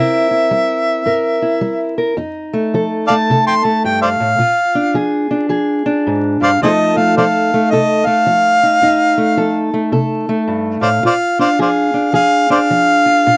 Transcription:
0.00 0.46 C3 medium
0.00 2.14 C4 medium
0.00 0.30 E4 medium
0.00 1.05 A#4 medium
0.00 1.96 E5 medium
0.31 1.41 E4 medium
0.51 1.02 G3 medium
1.06 1.57 G2 medium
1.06 1.96 A#4 medium
1.42 2.15 E4 medium
1.61 2.12 G3 medium
1.98 2.15 A#4 medium
2.17 2.68 F2 medium
2.17 4.36 D#4 medium
2.53 3.08 A3 medium
2.74 3.24 F3 medium
2.74 3.29 A4 medium
3.07 3.64 A3 medium
3.07 3.14 D5 medium
3.07 3.14 F5 medium
3.07 3.44 A5 loud
3.30 3.80 C3 medium
3.30 4.37 A4 medium
3.47 3.55 G5 medium
3.47 3.54 A5 medium
3.47 3.66 C6 medium
3.64 4.39 A3 medium
3.64 3.82 A5 medium
3.84 4.18 G2 medium
3.84 4.02 G5 medium
4.02 4.09 C5 medium
4.02 4.10 D5 medium
4.02 5.09 F5 medium
4.20 4.38 A2 medium
4.38 4.90 A#2 medium
4.38 6.63 F4 medium
4.75 5.29 D4 medium
4.94 5.45 F3 medium
4.94 5.49 G#4 medium
5.31 5.85 D4 medium
5.49 6.01 F3 medium
5.49 6.58 G#4 medium
5.86 6.59 D4 medium
6.07 6.40 G#2 medium
6.41 6.61 G2 medium
6.41 6.50 C5 medium
6.41 6.50 D5 medium
6.41 6.61 F5 loud
6.62 7.12 F2 medium
6.62 7.17 F3 medium
6.62 6.96 A3 medium
6.62 8.62 D#4 medium
6.62 6.69 G#4 medium
6.62 7.18 A4 medium
6.62 6.71 C5 medium
6.62 6.99 D#5 medium
6.97 7.54 A3 medium
6.97 7.16 F5 medium
7.17 7.68 F3 medium
7.17 7.73 A4 medium
7.17 7.25 C5 medium
7.17 7.24 D5 medium
7.17 7.72 F5 medium
7.54 8.06 A3 medium
7.71 8.23 C3 medium
7.71 8.81 A4 medium
7.71 8.07 D#5 medium
8.06 9.16 A3 medium
8.06 9.68 F5 loud
8.26 8.78 F3 medium
8.63 8.80 D#4 medium
8.82 9.33 F2 medium
8.82 11.02 D#4 medium
9.18 9.72 A3 medium
9.37 9.89 F3 medium
9.37 9.91 A4 medium
9.74 10.28 A3 medium
9.92 10.44 C3 medium
9.92 11.01 A4 medium
10.29 11.04 A3 medium
10.48 10.81 G2 medium
10.81 11.03 A2 medium
10.81 10.89 C5 medium
10.81 10.88 D5 medium
10.81 11.03 F5 medium
11.03 11.55 A#2 medium
11.03 13.05 F4 medium
11.03 11.14 C5 medium
11.03 11.14 D5 medium
11.03 11.39 F5 medium
11.39 11.93 D4 medium
11.39 11.49 C5 medium
11.39 11.48 D5 medium
11.39 11.60 F5 medium
11.59 12.10 F3 medium
11.59 12.13 G#4 medium
11.59 11.68 C5 soft
11.59 11.70 D5 soft
11.59 12.14 F5 medium
11.94 12.50 D4 medium
12.13 12.65 F3 medium
12.13 13.30 G#4 medium
12.13 12.48 F5 medium
12.50 13.37 D4 medium
12.50 12.59 C5 medium
12.50 12.59 D5 medium
12.50 13.37 F5 loud
12.71 13.21 F3 medium
13.06 13.27 F4 medium
13.27 13.37 A#2 medium
13.27 13.37 F4 medium

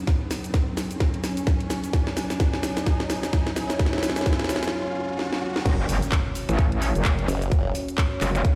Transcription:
0.00 5.62 F#3 medium
0.00 5.61 C#4 medium
0.00 5.62 C#5 medium
0.00 5.62 G#5 medium
0.00 riser medium
0.07 kick loud
0.07 snare medium
0.07 closed hi-hat medium
0.07 cabasa soft
0.31 snare medium
0.31 open hi-hat loud
0.31 cabasa medium
0.44 closed hi-hat soft
0.44 cabasa soft
0.54 kick loud
0.54 snare medium
0.54 closed hi-hat medium
0.54 cabasa soft
0.77 snare medium
0.77 open hi-hat medium
0.77 cabasa medium
0.91 closed hi-hat medium
0.91 cabasa soft
1.00 kick loud
1.00 snare medium
1.00 closed hi-hat medium
1.00 cabasa soft
1.14 closed hi-hat soft
1.24 snare medium
1.24 open hi-hat loud
1.24 cabasa medium
1.37 closed hi-hat medium
1.37 cabasa soft
1.47 kick loud
1.47 snare medium
1.47 closed hi-hat medium
1.47 cabasa soft
1.60 closed hi-hat soft
1.70 snare medium
1.70 open hi-hat medium
1.70 cabasa medium
1.84 closed hi-hat medium
1.84 cabasa soft
1.93 kick loud
1.93 snare medium
1.93 closed hi-hat medium
1.93 cabasa soft
2.07 snare medium
2.17 snare medium
2.17 open hi-hat loud
2.17 cabasa medium
2.30 snare medium
2.30 closed hi-hat medium
2.30 cabasa soft
2.40 kick loud
2.40 snare loud
2.40 closed hi-hat medium
2.40 cabasa soft
2.54 snare medium
2.63 snare medium
2.63 open hi-hat medium
2.63 cabasa medium
2.77 snare medium
2.77 closed hi-hat medium
2.77 cabasa soft
2.86 kick loud
2.86 snare loud
2.86 closed hi-hat medium
2.86 cabasa soft
3.00 snare medium
3.00 closed hi-hat soft
3.10 snare loud
3.10 open hi-hat loud
3.10 cabasa medium
3.23 snare medium
3.23 closed hi-hat medium
3.23 cabasa medium
3.33 kick loud
3.33 snare loud
3.33 closed hi-hat medium
3.33 cabasa soft
3.47 snare medium
3.47 closed hi-hat soft
3.56 snare loud
3.56 open hi-hat medium
3.56 cabasa medium
3.70 snare medium
3.70 closed hi-hat medium
3.70 cabasa soft
3.79 kick loud
3.79 snare loud
3.79 closed hi-hat medium
3.79 cabasa soft
3.86 snare medium
3.93 snare medium
3.98 snare medium
4.03 snare loud
4.03 open hi-hat loud
4.03 cabasa medium
4.10 snare medium
4.16 snare medium
4.16 closed hi-hat medium
4.16 cabasa soft
4.21 snare medium
4.26 kick loud
4.26 snare loud
4.26 closed hi-hat medium
4.26 cabasa soft
4.33 snare medium
4.40 snare medium
4.40 closed hi-hat soft
4.44 snare medium
4.49 snare loud
4.49 open hi-hat medium
4.49 cabasa medium
4.56 snare medium
4.63 snare medium
4.63 closed hi-hat medium
4.63 cabasa soft
4.68 snare medium
5.19 snare medium
5.33 snare medium
5.56 snare medium
5.66 6.00 F#1 loud
5.66 8.55 C#4 medium
5.66 8.55 F#4 medium
5.66 8.55 C#5 medium
5.66 kick loud
5.66 closed hi-hat medium
5.66 crash loud
5.66 impact medium
5.66 cabasa soft
5.89 open hi-hat loud
5.89 cabasa medium
6.02 closed hi-hat medium
6.02 cabasa soft
6.12 kick loud
6.12 clap loud
6.12 closed hi-hat medium
6.12 cabasa soft
6.35 open hi-hat loud
6.35 cabasa medium
6.49 6.93 A1 loud
6.49 finger snap medium
6.49 closed hi-hat medium
6.49 cabasa soft
6.59 kick loud
6.59 closed hi-hat medium
6.59 cabasa soft
6.72 closed hi-hat soft
6.82 open hi-hat loud
6.82 cabasa medium
6.95 7.27 F#1 loud
6.95 closed hi-hat medium
6.95 cabasa soft
7.05 kick loud
7.05 clap loud
7.05 closed hi-hat medium
7.05 cabasa soft
7.19 closed hi-hat soft
7.28 7.73 F#1 loud
7.28 open hi-hat medium
7.28 cabasa medium
7.42 closed hi-hat medium
7.42 cabasa soft
7.52 kick loud
7.52 closed hi-hat medium
7.52 cabasa soft
7.75 open hi-hat loud
7.75 cabasa medium
7.88 closed hi-hat medium
7.88 cabasa soft
7.98 kick loud
7.98 clap loud
7.98 closed hi-hat medium
7.98 cabasa soft
8.21 8.43 F#1 loud
8.21 clap medium
8.21 open hi-hat loud
8.21 cabasa medium
8.35 finger snap medium
8.35 closed hi-hat medium
8.35 cabasa soft
8.45 kick loud
8.45 closed hi-hat medium
8.45 cabasa soft

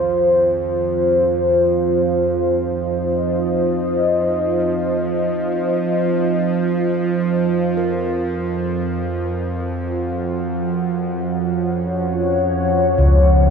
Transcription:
0.00 13.50 F2 medium
0.00 2.18 D#3 medium
0.00 13.50 F3 medium
0.00 7.91 F4 medium
0.00 7.91 C5 medium
0.00 2.22 F5 medium
1.90 7.91 D#5 medium
7.77 13.50 A#4 soft
7.93 13.50 F3 medium
9.04 13.50 F#5 medium
10.99 13.50 C#5 medium
12.98 13.50 C#2 medium

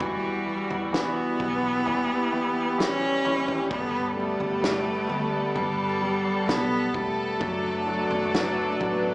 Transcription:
0.00 0.66 E2 medium
0.00 0.45 E3 medium
0.00 3.67 E3 medium
0.00 7.37 G3 medium
0.00 0.93 G3 medium
0.00 1.82 F#4 medium
0.00 kick medium
0.00 floor tom medium
0.46 0.91 E3 soft
0.70 1.36 E2 medium
0.70 floor tom medium
0.93 1.38 E3 medium
0.93 2.81 B3 loud
0.93 snare loud
1.40 1.83 B1 medium
1.40 1.84 E3 soft
1.40 kick medium
1.40 floor tom soft
1.86 3.67 E2 medium
1.86 2.31 E3 medium
1.86 3.69 G4 medium
1.86 floor tom medium
2.33 2.77 E3 soft
2.78 3.23 E3 medium
2.78 3.71 C#4 loud
2.78 snare loud
3.25 3.69 E3 soft
3.25 floor tom medium
3.48 floor tom medium
3.70 4.36 G1 medium
3.70 4.15 G3 medium
3.70 7.37 B3 medium
3.70 4.14 B3 loud
3.70 9.14 A4 medium
3.70 kick loud
3.70 floor tom medium
3.70 swell medium
4.17 4.61 G3 soft
4.17 5.57 A3 loud
4.40 5.05 G1 medium
4.40 floor tom medium
4.62 5.07 G3 soft
4.62 snare loud
5.09 5.57 D2 medium
5.09 5.54 G3 soft
5.09 floor tom medium
5.55 6.44 G1 medium
5.55 6.00 G3 medium
5.55 6.50 G3 loud
5.55 floor tom medium
6.02 6.47 G3 medium
6.48 6.91 B1 medium
6.48 6.93 G3 soft
6.48 6.97 B3 loud
6.48 snare loud
6.94 7.38 E1 medium
6.94 7.39 G3 medium
6.94 9.14 A3 medium
6.94 kick medium
6.94 floor tom soft
7.40 8.07 F#1 loud
7.40 7.85 F#3 medium
7.40 9.14 F#3 medium
7.40 9.14 D4 medium
7.40 kick medium
7.40 floor tom medium
7.87 8.32 F#3 soft
8.10 8.77 F#1 medium
8.10 floor tom medium
8.33 8.79 F#3 soft
8.33 snare loud
8.80 9.14 A1 medium
8.80 9.14 F#3 medium
8.80 kick medium
8.80 floor tom soft

